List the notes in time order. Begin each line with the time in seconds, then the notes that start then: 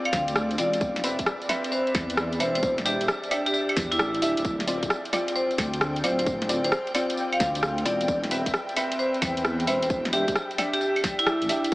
Already playing: C4 F4 D5
0.05 F5, closed hi-hat, tambourine, claves
0.13 D2, kick, snare, open hi-hat, tambourine
0.28 D2, closed hi-hat, tambourine
0.36 cross-stick, tambourine
0.51 closed hi-hat, tambourine
0.58 E1 C4 F4 D5, open hi-hat, tambourine
0.73 closed hi-hat, tambourine
0.81 kick, tambourine
0.96 snare, closed hi-hat, tambourine
1.04 C4 B4 E5, open hi-hat, tambourine
1.19 E1, kick, closed hi-hat, tambourine
1.26 cross-stick, tambourine
1.42 closed hi-hat, tambourine
1.49 C4 B4 E5, snare, open hi-hat, tambourine, claves
1.64 closed hi-hat, tambourine
1.72 C5, tambourine
1.87 closed hi-hat, tambourine
1.95 E2, kick, snare, open hi-hat, tambourine, claves
2.10 E2, closed hi-hat, tambourine
2.17 cross-stick, tambourine
2.33 closed hi-hat, tambourine
2.40 E1 C4 B4 C5 E5, open hi-hat, tambourine, claves
2.55 C5, closed hi-hat, tambourine
2.63 kick, tambourine
2.78 snare, closed hi-hat, tambourine
2.86 D4 G4 E5, open hi-hat, tambourine
3.01 E1, closed hi-hat, tambourine
3.08 cross-stick, tambourine
3.24 closed hi-hat, tambourine
3.31 D4 G4 E5, open hi-hat, tambourine, claves
3.46 G4, closed hi-hat, tambourine
3.54 G4, tambourine
3.69 closed hi-hat, tambourine, claves
3.76 E2, kick, snare, open hi-hat, tambourine
3.92 E2 E4, closed hi-hat, tambourine
3.99 A1, cross-stick, tambourine
4.15 closed hi-hat, tambourine
4.22 D1 D4 G4 E5, open hi-hat, tambourine
4.37 D1, closed hi-hat, tambourine
4.45 G5, kick, tambourine
4.60 snare, closed hi-hat, tambourine
4.67 C4 F4 D5, open hi-hat, tambourine
4.83 D1, kick, closed hi-hat, tambourine
4.90 cross-stick, tambourine
5.05 closed hi-hat, tambourine
5.13 C4 F4 D5, snare, open hi-hat, tambourine, claves
5.28 closed hi-hat, tambourine
5.36 C5, tambourine
5.51 closed hi-hat, tambourine
5.58 D2, kick, snare, open hi-hat, tambourine, claves
5.74 D2, closed hi-hat, tambourine
5.81 cross-stick, tambourine
5.96 closed hi-hat, tambourine
6.04 D1 C4 F4 C5 D5, open hi-hat, tambourine, claves
6.19 C5, closed hi-hat, tambourine
6.26 kick, tambourine
6.42 snare, closed hi-hat, tambourine
6.49 C4 F4 D5, open hi-hat, tambourine
6.64 D1 C5, closed hi-hat, tambourine
6.72 C5, cross-stick, tambourine
6.87 closed hi-hat, tambourine
6.95 C4 F4 D5, open hi-hat, tambourine, claves
7.10 closed hi-hat, tambourine
7.17 tambourine
7.33 F5, closed hi-hat, tambourine, claves
7.40 D2, kick, snare, open hi-hat, tambourine
7.55 D2, closed hi-hat, tambourine
7.63 cross-stick, tambourine
7.78 closed hi-hat, tambourine
7.85 E1 C4 F4 D5, open hi-hat, tambourine
8.01 closed hi-hat, tambourine
8.08 kick, tambourine
8.24 snare, closed hi-hat, tambourine
8.31 C4 B4 E5, open hi-hat, tambourine
8.46 E1, kick, closed hi-hat, tambourine
8.54 cross-stick
8.69 closed hi-hat, tambourine
8.76 C4 B4 E5, open hi-hat, tambourine, claves
8.92 closed hi-hat, tambourine
8.99 C5, tambourine
9.14 closed hi-hat, tambourine
9.22 E2, kick, snare, open hi-hat, tambourine, claves
9.37 E2, closed hi-hat, tambourine
9.45 cross-stick, tambourine
9.60 closed hi-hat, tambourine
9.67 E1 C4 B4 C5 E5, open hi-hat, tambourine, claves
9.82 C5, closed hi-hat, tambourine
9.90 kick, tambourine
10.05 snare, closed hi-hat, tambourine
10.13 D4 G4 E5, open hi-hat, tambourine
10.28 E1, kick, closed hi-hat, tambourine
10.36 cross-stick, tambourine
10.51 closed hi-hat, tambourine
10.58 D4 G4 E5, snare, open hi-hat, tambourine, claves
10.73 G4, closed hi-hat, tambourine
10.81 G4, tambourine
10.96 closed hi-hat, tambourine, claves
11.04 kick, snare, open hi-hat, tambourine
11.19 E4, closed hi-hat, tambourine
11.27 cross-stick, tambourine
11.42 A1, closed hi-hat, tambourine
11.49 D4 G4 E5, open hi-hat, tambourine
11.64 closed hi-hat, tambourine